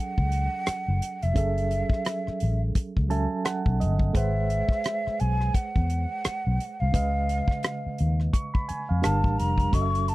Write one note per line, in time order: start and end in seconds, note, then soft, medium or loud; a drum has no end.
0.00 1.31 F#3 soft
0.00 1.31 C#4 soft
0.00 1.32 G#4 soft
0.00 1.32 A4 soft
0.00 1.33 E5 medium
0.00 1.24 F#5 medium
0.18 0.47 C#2 medium
0.18 kick medium
0.32 closed hi-hat medium
0.66 muted fingered electric bass stroke soft
0.66 cross-stick medium
0.66 closed hi-hat medium
0.88 0.99 F#1 medium
1.02 closed hi-hat medium
1.23 1.34 F1 medium
1.23 2.61 E5 medium
1.23 closed hi-hat soft
1.34 1.82 F#1 medium
1.34 3.05 F#3 soft
1.34 3.06 C#4 soft
1.34 3.06 G#4 soft
1.34 3.07 A4 soft
1.34 3.07 E5 medium
1.34 kick medium
1.34 closed hi-hat medium
1.58 closed hi-hat soft
1.71 closed hi-hat medium
1.90 muted fingered electric bass stroke soft
1.90 kick medium
1.90 cross-stick soft
2.05 cross-stick loud
2.05 closed hi-hat medium
2.27 muted fingered electric bass stroke soft
2.27 cross-stick soft
2.40 2.70 A1 medium
2.40 closed hi-hat medium
2.75 muted fingered electric bass stroke soft
2.75 kick medium
2.75 closed hi-hat medium
2.97 3.26 C#2 medium
2.97 kick medium
3.09 4.14 F#3 soft
3.09 4.14 C#4 soft
3.09 4.15 A4 soft
3.09 4.15 E5 medium
3.09 4.15 G#5 soft
3.09 3.42 A5 medium
3.09 closed hi-hat medium
3.45 3.77 F#5 medium
3.45 cross-stick medium
3.45 closed hi-hat medium
3.66 3.84 B1 medium
3.66 kick medium
3.80 4.10 G1 medium
3.80 4.12 D#5 medium
3.80 closed hi-hat medium
3.99 kick medium
4.13 4.61 G#1 medium
4.13 6.89 G#3 medium
4.13 6.89 G#4 soft
4.13 6.90 B4 soft
4.13 6.90 C5 soft
4.13 5.21 E5 medium
4.13 6.90 E5 soft
4.13 6.91 F#5 medium
4.13 kick medium
4.13 closed hi-hat medium
4.50 closed hi-hat medium
4.69 muted fingered electric bass stroke soft
4.69 kick medium
4.69 cross-stick soft
4.84 cross-stick loud
4.84 closed hi-hat medium
5.07 muted fingered electric bass stroke soft
5.07 cross-stick soft
5.20 5.49 B1 medium
5.20 5.56 G#5 medium
5.20 closed hi-hat medium
5.41 cross-stick soft
5.54 6.82 F#5 medium
5.54 muted fingered electric bass stroke soft
5.54 kick medium
5.54 closed hi-hat medium
5.76 6.05 E2 medium
5.76 kick medium
5.90 closed hi-hat medium
6.25 muted fingered electric bass stroke soft
6.25 cross-stick medium
6.25 closed hi-hat medium
6.47 6.57 B1 medium
6.60 closed hi-hat medium
6.80 6.92 C2 medium
6.80 8.19 F5 medium
6.92 7.40 C#2 medium
6.92 8.98 C#3 soft
6.92 8.98 G#3 soft
6.92 8.99 B4 soft
6.92 8.99 D#5 soft
6.92 8.31 F5 medium
6.92 kick medium
6.92 closed hi-hat medium
7.29 closed hi-hat medium
7.48 muted fingered electric bass stroke soft
7.48 kick medium
7.48 cross-stick soft
7.63 cross-stick loud
7.63 closed hi-hat medium
7.86 muted fingered electric bass stroke soft
7.98 8.28 D#2 medium
7.98 closed hi-hat medium
8.20 cross-stick soft
8.33 8.53 C#6 medium
8.33 kick medium
8.33 closed hi-hat medium
8.54 8.67 B5 medium
8.54 kick medium
8.69 8.88 G#5 medium
8.69 muted fingered electric bass stroke soft
8.69 closed hi-hat medium
8.89 9.01 F2 medium
8.89 9.02 F5 medium
9.02 9.21 G1 medium
9.02 9.72 G3 medium
9.02 9.72 D4 soft
9.02 9.72 G4 soft
9.02 9.73 A#4 soft
9.02 9.73 F5 medium
9.02 9.40 A5 medium
9.02 cross-stick medium
9.02 closed hi-hat medium
9.24 9.36 A1 medium
9.24 kick medium
9.38 9.68 F1 medium
9.38 9.75 A#5 medium
9.38 closed hi-hat medium
9.58 kick medium
9.58 closed hi-hat soft
9.71 10.15 F#1 medium
9.71 10.15 F#3 soft
9.71 10.15 C#4 soft
9.71 10.15 F#4 soft
9.71 10.15 A4 soft
9.71 9.81 D#5 soft
9.71 10.10 C#6 medium
9.71 kick medium
9.71 closed hi-hat medium
9.82 10.15 E5 soft
9.95 closed hi-hat soft
10.08 10.15 A5 medium
10.08 closed hi-hat medium